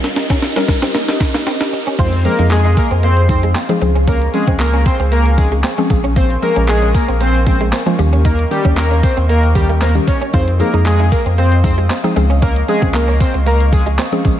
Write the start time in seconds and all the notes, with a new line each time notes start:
Already playing: G3 C#4 D#4 G4 A#4 D#5, riser
0.04 snare, closed hi-hat
0.16 muted clean electric guitar stroke, snare, closed hi-hat, tambourine
0.30 C#4, kick, snare, closed hi-hat
0.42 snare, closed hi-hat, tambourine
0.56 G3 C#4 D#4 A#4, snare, closed hi-hat
0.68 G3 C#4 D#4 A#4, muted clean electric guitar stroke, kick, snare, closed hi-hat, tambourine
0.82 C4, snare, closed hi-hat
0.95 A#3, snare, closed hi-hat
1.08 snare, closed hi-hat
1.20 muted clean electric guitar stroke, kick, snare, closed hi-hat, tambourine
1.34 A#3, snare, closed hi-hat
1.47 C4, snare, closed hi-hat, tambourine
1.61 snare, closed hi-hat
1.73 muted clean electric guitar stroke, open hi-hat
1.87 C#4, closed hi-hat
1.99 F2 F3 G#3 C4 D#4 F4 G#4 C5 D#5 F5 C6, kick, closed hi-hat, crash, tambourine
2.13 closed hi-hat
2.25 F3 G#3 A#3 C4 D#4 G#4 A#4, muted clean electric guitar stroke, closed hi-hat, tambourine
2.39 F2 F3 G#3 C4 D#4 G#4, closed hi-hat
2.51 G#3 G#4, snare, clap, closed hi-hat, tambourine
2.65 D#4, closed hi-hat
2.77 A#3 A#4, muted clean electric guitar stroke, kick, closed hi-hat, tambourine
2.91 F2 C4, closed hi-hat
3.03 A#3 C4 C5, closed hi-hat
3.17 closed hi-hat
3.29 F3 G#3 C4 D#4 G#4 C5, muted clean electric guitar stroke, kick, closed hi-hat, tambourine
3.43 G#3, closed hi-hat
3.55 C4, snare, clap, closed hi-hat, tambourine
3.69 F3 G#3 C4 D#4 G#4, closed hi-hat
3.81 C#2 F3 G#3 C4 C#4 G#4 G#5 C#6, muted clean electric guitar stroke, closed hi-hat, tambourine
3.95 C#4, closed hi-hat
4.08 A#3 C#4 A#4, kick, closed hi-hat, tambourine
4.22 closed hi-hat
4.34 F3 G#3 C4 C#4 G#4, muted clean electric guitar stroke, closed hi-hat, tambourine
4.47 C#2 F3 G#3 C4 C#4 G#4, kick, closed hi-hat
4.59 A#3 A#4, snare, clap, closed hi-hat, tambourine
4.73 C#4, closed hi-hat
4.86 C4 C5, muted clean electric guitar stroke, kick, closed hi-hat, tambourine
4.99 C#2 C4, closed hi-hat
5.12 A#3 A#4, closed hi-hat, tambourine
5.26 closed hi-hat
5.38 F3 G#3 C4 C#4 D#4 G#4, muted clean electric guitar stroke, kick, closed hi-hat, tambourine
5.52 G#3, closed hi-hat
5.64 C4, snare, clap, closed hi-hat, tambourine
5.78 F3 G#3 C4 C#4 G#4, closed hi-hat
5.90 A#1 F3 G#3 A#3 C#4 G#4 A#4 G#5, muted clean electric guitar stroke, kick, closed hi-hat, tambourine
6.04 C#4, closed hi-hat
6.16 A#3 C4 C5, kick, closed hi-hat, tambourine
6.30 closed hi-hat
6.42 F3 G#3 A#3 C#4 G#4 A#4, muted clean electric guitar stroke, closed hi-hat, tambourine
6.56 A#1 F3 G#3 A#3 C#4 G#4, closed hi-hat
6.68 G#3 G#4, snare, clap, closed hi-hat, tambourine
6.82 C#4, closed hi-hat
6.95 A#3 A#4, muted clean electric guitar stroke, kick, closed hi-hat, tambourine
7.08 A#1 C4, closed hi-hat
7.21 A#3 C4 C5, closed hi-hat, tambourine
7.34 closed hi-hat
7.46 F3 G#3 A#3 C4 C#4 G#4 C5, muted clean electric guitar stroke, kick, closed hi-hat, tambourine
7.61 G#3, closed hi-hat
7.73 C4, snare, clap, closed hi-hat, tambourine
7.86 F3 G#3 A#3 C#4 F4, closed hi-hat
7.99 D#2 D#3 G3 A#3 C#4 G4 D#5 G5 C#6, muted clean electric guitar stroke, closed hi-hat, tambourine
8.13 C#4, closed hi-hat
8.25 A#3 D#4 A#4, kick, closed hi-hat, tambourine
8.39 closed hi-hat
8.51 D#3 G3 A#3 C#4 G4, muted clean electric guitar stroke, closed hi-hat, tambourine
8.64 D#2 D#3 G3 A#3 C#4 G4, kick, closed hi-hat
8.77 A#3 A#4, snare, clap, closed hi-hat, tambourine
8.91 C#4, closed hi-hat
9.03 C4 C5, muted clean electric guitar stroke, kick, closed hi-hat, tambourine
9.17 D#2 C4, closed hi-hat
9.29 A#3 A#4, closed hi-hat, tambourine
9.43 closed hi-hat
9.55 D#3 G3 A#3 C#4 G4, muted clean electric guitar stroke, kick, closed hi-hat, tambourine
9.69 A#3, closed hi-hat
9.81 A#3 C4 A#4, snare, clap, closed hi-hat, tambourine
9.95 D#3 G3 A#3 C#4 G4, closed hi-hat
10.08 C#4 C#5, muted clean electric guitar stroke, kick, open hi-hat, tambourine
10.21 C#4, closed hi-hat
10.33 F2 F3 G#3 C4 D#4 F4 G#4 C5 D#5 F5 D#6, kick, closed hi-hat, tambourine
10.48 closed hi-hat
10.59 F3 G#3 A#3 C4 D#4 G#4 A#4, muted clean electric guitar stroke, closed hi-hat, tambourine
10.73 F2 F3 G#3 C4 D#4 G#4, closed hi-hat
10.86 G#3 G#4, snare, clap, closed hi-hat, tambourine
11.00 D#4, closed hi-hat
11.12 A#3 A#4, muted clean electric guitar stroke, kick, closed hi-hat, tambourine
11.26 F2 C4, closed hi-hat
11.38 A#3 C4 C5, closed hi-hat, tambourine
11.52 closed hi-hat
11.64 F3 G#3 C4 D#4 G#4 C5, muted clean electric guitar stroke, kick, closed hi-hat, tambourine
11.78 G#3, closed hi-hat
11.90 C4, snare, clap, closed hi-hat, tambourine
12.04 F3 G#3 C4 D#4 G#4, closed hi-hat
12.16 C#2 F3 G#3 C4 C#4 G#4 C#6, muted clean electric guitar stroke, closed hi-hat, tambourine
12.30 C#4, closed hi-hat
12.42 A#3 C#4 A#4, kick, closed hi-hat, tambourine
12.56 closed hi-hat
12.68 F3 G#3 C4 C#4 G#4, muted clean electric guitar stroke, closed hi-hat, tambourine
12.82 C#2 F3 G#3 C4 C#4 G#4, kick, closed hi-hat
12.94 A#3 A#4, snare, clap, closed hi-hat, tambourine
13.08 C#4, closed hi-hat
13.20 C4 C5, muted clean electric guitar stroke, kick, closed hi-hat, tambourine
13.34 C#2 C4, closed hi-hat
13.46 A#3 A#4, closed hi-hat, tambourine
13.60 closed hi-hat
13.72 F3 G#3 C4 C#4 G#4, muted clean electric guitar stroke, kick, closed hi-hat, tambourine
13.86 G#3, closed hi-hat
13.99 C4, snare, clap, closed hi-hat, tambourine
14.12 F3 G#3 C4 C#4 G#4, closed hi-hat
14.25 A#1 F3 G#3 A#3 C#4 G#4 A#4, muted clean electric guitar stroke, kick, closed hi-hat, tambourine